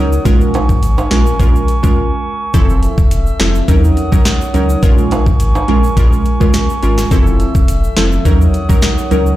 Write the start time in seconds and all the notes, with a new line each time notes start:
Already playing: C#2 F#3 C#4 D#4 A#4 C#5 F#5 D#6
0.12 shaker
0.25 A#1 G#3 C#4 F4 A#4 G#5 C#6, kick, closed hi-hat, shaker
0.41 shaker
0.54 closed hi-hat, high timbale, shaker
0.69 G#1, kick, shaker
0.83 closed hi-hat, shaker
0.98 high timbale, shaker
1.11 A#1 G#3 C#4 F4 A#4, snare, closed hi-hat
1.26 shaker
1.39 A#1 G#3 C#4 F4 A#4, kick, closed hi-hat, shaker
1.55 shaker
1.68 closed hi-hat, shaker
1.83 G#3 C#4 F4 A#4, kick, shaker
2.54 F1 F3 C4 E4 A4 E5 E6, kick, closed hi-hat, shaker
2.69 shaker
2.83 closed hi-hat, shaker
2.98 E1, kick, shaker
3.11 closed hi-hat, shaker
3.27 shaker
3.40 F1 F3 C4 E4 A4, snare, closed hi-hat
3.55 shaker
3.68 D#2 F#3 C#4 D#4 A#4 C#5 F#5 D#6, kick, closed hi-hat, shaker
3.84 shaker
3.97 closed hi-hat, shaker
4.12 F#3 C#4 D#4 A#4, kick, shaker
4.25 snare, closed hi-hat, shaker
4.41 shaker
4.54 C#2 F#3 C#4 D#4 A#4, closed hi-hat, shaker
4.69 shaker
4.82 A#1 G#3 C#4 F4 A#4 G#5 C#6, kick, closed hi-hat, shaker
4.98 shaker
5.11 closed hi-hat, high timbale, shaker
5.26 G#1, kick, shaker
5.40 closed hi-hat, shaker
5.55 high timbale, shaker
5.68 A#1 G#3 C#4 F4 A#4, closed hi-hat
5.84 shaker
5.97 A#1 G#3 C#4 F4 A#4, kick, closed hi-hat, shaker
6.13 shaker
6.25 closed hi-hat, shaker
6.40 G#3 C#4 F4 A#4, kick, shaker
6.53 snare, closed hi-hat, shaker
6.70 shaker
6.83 G#1 G#3 C#4 F4 A#4, closed hi-hat, shaker
6.98 snare, shaker
7.11 F1 F3 C4 E4 A4 E5 E6, kick, closed hi-hat, shaker
7.26 shaker
7.40 closed hi-hat, shaker
7.55 E1, kick, shaker
7.68 closed hi-hat, shaker
7.84 shaker
7.97 F1 F3 C4 E4 A4, snare, closed hi-hat
8.12 shaker
8.25 D#2 F#3 C#4 D#4 A#4 C#5 F#5 D#6, kick, closed hi-hat, shaker
8.41 shaker
8.54 closed hi-hat, shaker
8.69 F#3 C#4 D#4 A#4, kick, shaker
8.82 snare, closed hi-hat, shaker
8.98 shaker
9.11 C#2 F#3 C#4 D#4 A#4, closed hi-hat, shaker
9.26 shaker